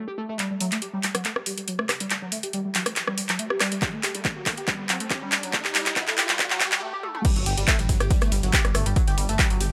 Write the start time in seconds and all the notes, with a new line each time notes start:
0.08 G4
0.18 A3
0.29 A3
0.39 G3, clap, closed hi-hat, riser
0.50 G3
0.60 F#3, open hi-hat
0.72 A3, clap, closed hi-hat
0.82 G4, closed hi-hat
0.93 G3
1.03 G3, clap, open hi-hat
1.15 F#3, cross-stick, closed hi-hat
1.25 A3, clap, closed hi-hat
1.36 G4, cross-stick
1.46 G3, open hi-hat
1.58 G3, closed hi-hat
1.68 F#3, closed hi-hat
1.79 A3, cross-stick
1.89 G4, cross-stick, clap, open hi-hat
2.00 G3, closed hi-hat
2.10 G3, clap, closed hi-hat
2.22 F#3
2.32 A3, open hi-hat
2.43 G4, closed hi-hat
2.53 G3, closed hi-hat
2.65 G3
2.75 F#3, clap, open hi-hat
2.86 A3, cross-stick, closed hi-hat
2.96 G4, clap, closed hi-hat
3.08 G3, cross-stick
3.18 G3, open hi-hat
3.29 F#3, clap, closed hi-hat
3.39 A3, closed hi-hat
3.50 G4, cross-stick
3.60 G3, cross-stick, clap, open hi-hat
3.72 G3, closed hi-hat
3.82 F#3, kick, clap, closed hi-hat
3.93 A3
4.03 G4, clap, open hi-hat
4.15 G3, closed hi-hat
4.25 kick, clap, closed hi-hat
4.36 F#3
4.46 A3, kick, clap, open hi-hat
4.57 G4, closed hi-hat
4.68 G3, kick, clap, closed hi-hat
4.79 G3
4.89 F#3, clap, open hi-hat
5.00 A3, closed hi-hat
5.10 G4, kick, clap, closed hi-hat
5.22 G3
5.32 G3, clap, open hi-hat
5.43 F#3, closed hi-hat
5.53 A3, kick, clap, closed hi-hat
5.65 G4, clap
5.75 G3, clap, open hi-hat
5.86 G3, clap, closed hi-hat
5.96 F#3, kick, clap, closed hi-hat
6.08 A3, clap, open hi-hat
6.18 G4, clap, open hi-hat
6.29 G3, clap, closed hi-hat
6.39 G3, kick, clap, closed hi-hat
6.50 F#3, clap
6.60 G3, kick, clap, open hi-hat
6.72 G3, clap, closed hi-hat
6.82 A3
6.93 G4
7.03 A3, high tom
7.15 A3, mid tom
7.25 G3, kick, closed hi-hat, crash
7.36 G1 F#3, closed hi-hat
7.46 G1 G4, closed hi-hat, open hi-hat, ride
7.58 G1 G3, closed hi-hat
7.68 A3, kick, snare, clap, closed hi-hat
7.79 A1 G3, snare, closed hi-hat
7.89 G1 F#3, kick, closed hi-hat, open hi-hat, ride
8.00 G1 G4, cross-stick, closed hi-hat
8.10 G3, kick, closed hi-hat
8.21 G1 A3, cross-stick, closed hi-hat
8.32 G1 G3, closed hi-hat, open hi-hat, ride
8.43 G1 F#3, snare, closed hi-hat
8.53 G4, kick, snare, clap, closed hi-hat
8.65 G1 G3, cross-stick, closed hi-hat
8.74 G1 A3, cross-stick, closed hi-hat, open hi-hat, ride
8.86 G1 G3, closed hi-hat
8.96 F#3, kick, closed hi-hat
9.07 G1 G4, snare, closed hi-hat
9.18 G1 G3, closed hi-hat, open hi-hat, ride
9.29 G1 A3, closed hi-hat
9.39 G3, kick, snare, clap, closed hi-hat
9.50 G1 F#3, closed hi-hat
9.60 G1 G4, closed hi-hat, open hi-hat, ride